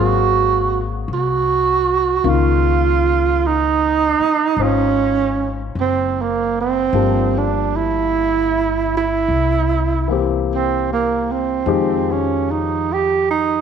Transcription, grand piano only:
0.00 2.25 F#3 soft
0.00 2.23 A#3 soft
0.00 2.25 C4 soft
0.00 2.26 G#4 soft
2.24 6.94 C#3 soft
2.24 6.93 D#3 soft
2.24 6.92 A#3 soft
2.24 4.61 F4 soft
4.59 6.94 D#4 soft
4.59 6.95 F4 soft
4.59 6.94 C5 soft
6.94 9.29 F3 soft
6.94 9.30 A#3 soft
6.94 9.30 D4 soft
6.94 9.30 G4 soft
10.08 11.65 E3 soft
10.08 11.66 A#3 soft
10.08 11.67 C4 soft
10.12 11.67 G4 medium
11.66 13.61 D#3 soft
11.66 13.61 F3 soft
11.66 13.61 G#3 soft
11.66 13.61 G4 medium

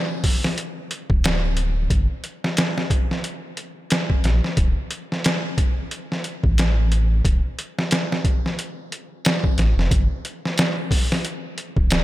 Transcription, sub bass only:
1.10 1.88 D1 medium
1.91 2.08 G1 loud
4.24 4.41 A#1 medium
4.57 4.74 D1 medium
6.44 7.21 A1 medium
7.25 7.41 D1 medium
9.58 9.74 A1 medium
9.77 9.89 F1 loud
9.92 10.08 G1 medium
11.77 12.04 D1 medium

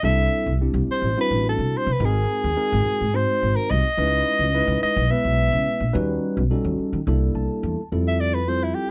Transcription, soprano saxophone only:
0.04 0.57 E5 loud
0.91 1.17 C5 medium
1.21 1.45 B4 medium
1.49 1.79 A4 medium
1.77 1.94 C5 medium
1.92 2.06 B4 medium
2.05 3.17 G#4 loud
3.16 3.58 C5 medium
3.56 3.72 A#4 medium
3.71 4.82 D#5 loud
4.83 5.12 D#5 loud
5.11 5.95 E5 loud
8.08 8.22 E5 medium
8.20 8.36 D5 medium
8.34 8.50 B4 medium
8.49 8.65 C5 medium
8.64 8.76 E4 medium
8.74 8.91 G4 medium

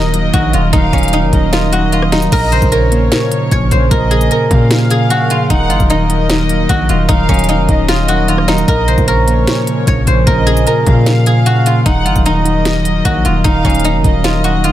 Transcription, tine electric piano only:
0.00 0.33 D#3 medium
0.00 0.12 F#3 medium
0.00 0.73 D#4 loud
0.14 0.52 F#3 medium
0.33 0.72 D#3 medium
0.53 0.92 F#3 medium
0.73 1.11 D#3 medium
0.93 1.71 F#3 medium
1.12 1.52 D#3 medium
1.33 2.32 D#4 loud
1.53 1.92 D#3 medium
1.72 2.11 F#3 medium
1.93 2.32 D#3 medium
2.13 2.32 F#3 medium
2.32 2.71 A#2 medium
2.52 3.30 C#3 medium
2.72 3.10 A#2 medium
2.92 3.91 A#3 loud
3.11 3.50 A#2 medium
3.31 3.70 C#3 medium
3.52 3.90 A#2 medium
3.71 4.10 C#3 medium
3.91 4.30 A#2 medium
4.11 4.89 C#3 medium
4.31 4.70 A#2 medium
4.51 5.50 A#3 loud
4.71 5.09 A#2 medium
4.91 5.29 C#3 medium
5.10 5.50 A#2 medium
5.30 5.50 C#3 medium
5.69 6.48 F#3 medium
5.90 6.28 D#3 medium
6.09 7.09 D#4 loud
6.29 6.68 D#3 medium
6.49 6.88 F#3 medium
6.69 7.08 D#3 medium
6.89 7.28 F#3 medium
7.09 7.47 D#3 medium
7.29 8.06 F#3 medium
7.48 7.88 D#3 medium
7.69 8.68 D#4 loud
7.89 8.27 D#3 medium
8.08 8.47 F#3 medium
8.29 8.68 D#3 medium
8.48 8.68 F#3 medium
8.68 9.07 A#2 medium
8.88 9.66 C#3 medium
9.08 9.46 A#2 medium
9.27 10.27 A#3 loud
9.47 9.86 A#2 medium
9.67 10.06 C#3 medium
9.87 10.26 A#2 loud
10.07 10.46 C#3 medium
10.27 10.65 A#2 medium
10.47 11.25 C#3 medium
10.67 11.05 A#2 medium
10.87 11.86 A#3 loud
11.07 11.45 A#2 medium
11.26 11.64 C#3 medium
11.46 11.86 A#2 medium
11.66 11.86 C#3 medium
11.86 12.24 D#3 loud
12.05 12.84 F#3 medium
12.25 12.64 D#3 medium
12.45 13.45 D#4 loud
12.65 13.04 D#3 medium
12.85 13.23 F#3 medium
13.05 13.44 D#3 loud
13.25 13.64 F#3 medium
13.65 14.42 F#3 medium
13.84 14.24 D#3 medium
14.05 14.72 D#4 loud
14.25 14.63 D#3 medium
14.43 14.72 F#3 medium
14.64 14.72 D#3 medium

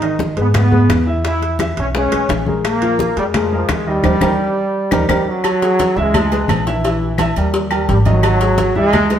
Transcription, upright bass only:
0.00 0.31 G#1 medium
0.37 0.86 G#2 medium
0.89 1.71 E2 medium
1.77 2.10 B1 medium
2.12 2.28 B1 medium
2.29 3.11 A#1 medium
3.16 3.65 F2 medium
3.69 4.01 D#2 medium
4.04 4.17 D#2 medium
4.21 4.35 D#2 loud
4.91 5.05 D#2 loud
5.09 5.22 D#2 medium
5.96 6.45 C#2 loud
6.49 7.30 A#1 loud
7.37 7.85 D#2 loud
7.89 8.70 G#1 medium
8.75 9.19 C#2 medium

